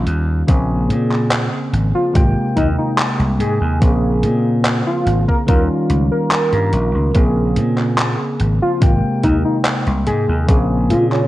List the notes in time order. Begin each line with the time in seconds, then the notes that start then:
Already playing: D#3 G3 C#4 F4
0.07 D#2, closed hi-hat
0.47 A#1 C#3 A#3 C4 G#4, kick, closed hi-hat
0.89 A#2, closed hi-hat
1.12 clap
1.31 clap, closed hi-hat
1.73 G#1, closed hi-hat
1.95 F4
2.14 G#1 C3 G#3 A#3 G5, kick, closed hi-hat
2.56 D#2 D#4, kick, closed hi-hat
2.78 D#4
2.98 clap, closed hi-hat
3.19 C2, closed hi-hat
3.39 G#2 G#4, closed hi-hat
3.61 D#2
3.80 A#1 C#3 A#3 C4 G#4, kick, closed hi-hat
4.23 A#2, closed hi-hat
4.65 clap, closed hi-hat
4.87 F4
5.06 G#1, closed hi-hat
5.28 A#4, kick
5.47 D#2 D#3 G3 C#4 F4 A#4, kick, closed hi-hat
5.90 C#2, closed hi-hat
6.11 A#4
6.31 clap, closed hi-hat
6.53 G2, closed hi-hat
6.73 A#1, closed hi-hat
6.95 C#2
7.13 A#1 C#3 A#3 C4 G#4, kick, closed hi-hat
7.56 A#2, closed hi-hat
7.78 clap
7.98 clap, closed hi-hat
8.40 G#1, closed hi-hat
8.62 F4
8.80 G#1 C3 G#3 A#3 G5, kick, closed hi-hat
9.23 D#2 D#4, kick, closed hi-hat
9.45 D#4
9.65 clap, closed hi-hat
9.87 C2, closed hi-hat
10.07 G#2 G#4, closed hi-hat
10.28 D#2
10.47 A#1 C#3 A#3 C4 G#4, kick, closed hi-hat
10.90 A#2 F4, closed hi-hat
11.12 C#4, clap